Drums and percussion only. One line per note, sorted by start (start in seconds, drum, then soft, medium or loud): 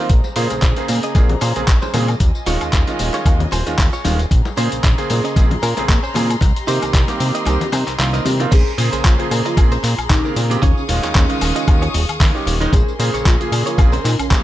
0.09 kick loud
0.09 closed hi-hat medium
0.09 tambourine soft
0.24 tambourine soft
0.24 muted conga soft
0.36 open hi-hat loud
0.36 tambourine medium
0.50 closed hi-hat soft
0.50 tambourine soft
0.50 muted conga medium
0.62 kick loud
0.62 clap loud
0.62 closed hi-hat medium
0.62 tambourine soft
0.76 closed hi-hat soft
0.76 tambourine soft
0.88 open hi-hat loud
0.88 tambourine medium
0.88 muted conga medium
1.03 closed hi-hat soft
1.03 tambourine soft
1.15 kick loud
1.15 closed hi-hat medium
1.15 tambourine soft
1.15 muted conga medium
1.29 closed hi-hat soft
1.29 low conga medium
1.41 open hi-hat loud
1.41 tambourine medium
1.41 high woodblock medium
1.56 closed hi-hat soft
1.56 tambourine soft
1.56 muted conga soft
1.68 kick loud
1.68 clap loud
1.68 closed hi-hat medium
1.68 tambourine soft
1.82 tambourine soft
1.82 muted conga medium
1.93 open hi-hat loud
1.93 tambourine medium
1.93 high conga medium
1.93 low conga medium
1.93 high woodblock medium
2.08 closed hi-hat soft
2.08 tambourine soft
2.08 high woodblock medium
2.20 kick loud
2.20 closed hi-hat medium
2.20 tambourine soft
2.20 muted conga soft
2.35 tambourine soft
2.46 open hi-hat loud
2.46 tambourine medium
2.46 muted conga medium
2.61 closed hi-hat soft
2.61 tambourine soft
2.61 high woodblock medium
2.73 kick loud
2.73 clap loud
2.73 closed hi-hat medium
2.73 tambourine soft
2.87 closed hi-hat soft
2.87 tambourine soft
2.87 muted conga medium
2.99 open hi-hat loud
2.99 tambourine medium
3.13 closed hi-hat soft
3.13 tambourine soft
3.13 muted conga medium
3.26 kick loud
3.26 closed hi-hat medium
3.26 tambourine soft
3.26 high woodblock medium
3.40 closed hi-hat soft
3.40 low conga medium
3.51 open hi-hat medium
3.51 tambourine medium
3.51 muted conga soft
3.51 high woodblock medium
3.67 closed hi-hat soft
3.67 tambourine soft
3.78 kick loud
3.78 clap loud
3.78 open hi-hat medium
3.78 tambourine soft
3.78 muted conga medium
3.93 tambourine soft
4.04 open hi-hat loud
4.04 tambourine medium
4.04 high conga medium
4.04 low conga medium
4.19 closed hi-hat soft
4.19 tambourine soft
4.19 muted conga medium
4.31 kick loud
4.31 closed hi-hat medium
4.31 tambourine soft
4.45 tambourine soft
4.45 muted conga medium
4.57 open hi-hat loud
4.57 tambourine medium
4.72 closed hi-hat medium
4.72 tambourine soft
4.83 kick loud
4.83 clap loud
4.83 closed hi-hat medium
4.83 tambourine soft
4.83 muted conga medium
4.98 closed hi-hat soft
4.98 tambourine soft
5.10 open hi-hat loud
5.10 tambourine medium
5.10 muted conga medium
5.25 closed hi-hat medium
5.25 tambourine soft
5.36 kick loud
5.36 closed hi-hat medium
5.36 tambourine soft
5.51 closed hi-hat soft
5.51 muted conga medium
5.51 low conga medium
5.63 open hi-hat loud
5.63 tambourine medium
5.63 high woodblock medium
5.77 closed hi-hat medium
5.77 tambourine soft
5.77 muted conga medium
5.89 kick loud
5.89 clap loud
5.89 closed hi-hat medium
5.89 tambourine soft
6.04 tambourine soft
6.14 open hi-hat loud
6.14 tambourine medium
6.14 muted conga medium
6.14 high conga medium
6.14 low conga medium
6.14 high woodblock medium
6.30 closed hi-hat medium
6.30 tambourine soft
6.30 high woodblock medium
6.41 kick loud
6.41 closed hi-hat medium
6.41 tambourine soft
6.41 muted conga medium
6.56 closed hi-hat soft
6.56 tambourine soft
6.68 open hi-hat loud
6.68 tambourine medium
6.82 closed hi-hat medium
6.82 tambourine soft
6.82 muted conga medium
6.82 high woodblock medium
6.94 kick loud
6.94 clap loud
6.94 closed hi-hat medium
6.94 tambourine soft
7.08 closed hi-hat soft
7.08 tambourine soft
7.08 muted conga medium
7.20 open hi-hat loud
7.20 tambourine medium
7.20 high conga medium
7.35 closed hi-hat medium
7.35 tambourine soft
7.45 closed hi-hat medium
7.45 tambourine soft
7.45 muted conga medium
7.45 high woodblock medium
7.61 closed hi-hat soft
7.61 tambourine soft
7.61 low conga loud
7.72 open hi-hat loud
7.72 tambourine medium
7.72 muted conga medium
7.72 high woodblock medium
7.88 clap soft
7.88 closed hi-hat medium
7.88 tambourine soft
7.99 clap loud
7.99 open hi-hat medium
7.99 tambourine soft
8.14 closed hi-hat soft
8.14 tambourine soft
8.14 muted conga soft
8.25 open hi-hat loud
8.25 tambourine medium
8.25 high conga medium
8.25 low conga medium
8.40 closed hi-hat medium
8.40 tambourine soft
8.40 muted conga medium
8.52 kick loud
8.52 closed hi-hat medium
8.52 tambourine soft
8.52 crash loud
8.67 tambourine soft
8.78 open hi-hat loud
8.78 tambourine medium
8.93 closed hi-hat medium
8.93 tambourine soft
9.04 kick loud
9.04 clap loud
9.04 closed hi-hat medium
9.04 tambourine soft
9.20 closed hi-hat soft
9.20 tambourine soft
9.31 open hi-hat loud
9.31 tambourine medium
9.31 high woodblock medium
9.46 closed hi-hat medium
9.46 tambourine soft
9.57 kick loud
9.57 closed hi-hat medium
9.57 tambourine soft
9.57 high woodblock medium
9.72 closed hi-hat soft
9.72 tambourine soft
9.84 clap soft
9.84 open hi-hat loud
9.84 tambourine medium
9.99 closed hi-hat medium
9.99 tambourine soft
9.99 high woodblock medium
10.10 kick loud
10.10 clap loud
10.10 closed hi-hat medium
10.10 tambourine soft
10.25 tambourine soft
10.36 open hi-hat loud
10.36 tambourine medium
10.51 closed hi-hat medium
10.51 tambourine soft
10.63 kick loud
10.63 closed hi-hat medium
10.63 tambourine soft
10.77 tambourine soft
10.89 open hi-hat loud
10.89 tambourine medium
11.03 clap soft
11.03 closed hi-hat medium
11.03 tambourine soft
11.15 kick loud
11.15 clap loud
11.15 closed hi-hat medium
11.15 tambourine soft
11.30 closed hi-hat soft
11.30 tambourine soft
11.41 open hi-hat loud
11.41 tambourine medium
11.41 high woodblock medium
11.56 closed hi-hat medium
11.56 tambourine soft
11.68 kick loud
11.68 closed hi-hat medium
11.68 tambourine soft
11.68 high woodblock medium
11.82 closed hi-hat soft
11.82 tambourine soft
11.94 open hi-hat loud
11.94 tambourine medium
12.09 closed hi-hat medium
12.09 tambourine soft
12.09 high woodblock medium
12.20 kick loud
12.20 clap loud
12.20 open hi-hat medium
12.20 tambourine soft
12.36 tambourine soft
12.47 open hi-hat loud
12.47 tambourine medium
12.62 closed hi-hat medium
12.62 tambourine soft
12.73 kick loud
12.73 closed hi-hat medium
12.73 tambourine soft
12.88 tambourine soft
13.00 open hi-hat loud
13.00 tambourine medium
13.14 closed hi-hat medium
13.14 tambourine soft
13.25 kick loud
13.25 clap loud
13.25 closed hi-hat medium
13.25 tambourine soft
13.41 closed hi-hat soft
13.41 tambourine soft
13.52 open hi-hat loud
13.52 tambourine medium
13.52 high woodblock medium
13.67 closed hi-hat medium
13.67 tambourine soft
13.78 kick loud
13.78 closed hi-hat medium
13.78 tambourine soft
13.78 high woodblock medium
13.93 closed hi-hat soft
13.93 tambourine soft
14.05 clap soft
14.05 open hi-hat loud
14.05 tambourine medium
14.19 closed hi-hat soft
14.19 tambourine soft
14.19 high woodblock medium
14.31 kick loud
14.31 clap loud
14.31 closed hi-hat medium
14.31 tambourine soft